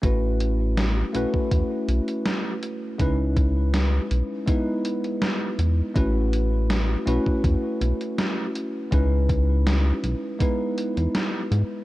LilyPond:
<<
  \new Staff \with { instrumentName = "Tine electric piano" } { \time 4/4 \key a \lydian \tempo 4 = 81 <a cis' e' fis' b'>4. <a cis' e' fis' b'>2~ <a cis' e' fis' b'>8 | <gis cis' dis' e' b'>2 <gis b dis' e' b'>2 | <a cis' e' fis' b'>4. <a cis' e' fis' b'>2~ <a cis' e' fis' b'>8 | <gis cis' dis' e' b'>2 <gis b dis' e' b'>2 | }
  \new Staff \with { instrumentName = "Analog synth bass" } { \clef bass \time 4/4 \key a \lydian a,,4~ a,,16 r16 b,,16 r16 e,16 r16 b,,16 r4 r16 | cis,4~ cis,16 r16 b,,16 r4. r16 e,16 r16 | a,,4~ a,,16 r16 b,,16 r16 e,16 r16 b,,16 r4 r16 | cis,4~ cis,16 r16 b,,16 r4 e,16 r8 gis,16 r16 | }
  \new DrumStaff \with { instrumentName = "Drums" } \drummode { \time 4/4 <hh bd>8 hh8 <hh sn>8 hh16 bd16 <hh bd>8 hh16 hh16 <hh sn>8 hh8 | <hh bd>8 <hh bd>8 <hh sn>8 hh8 <hh bd>8 hh16 hh16 <hh sn>8 hh8 | <hh bd>8 hh8 <hh sn>8 hh16 bd16 <hh bd>8 hh16 hh16 <hh sn>8 hh8 | <hh bd>8 <hh bd>8 <hh sn>8 hh8 <hh bd>8 hh16 hh16 <hh sn>8 hh8 | }
>>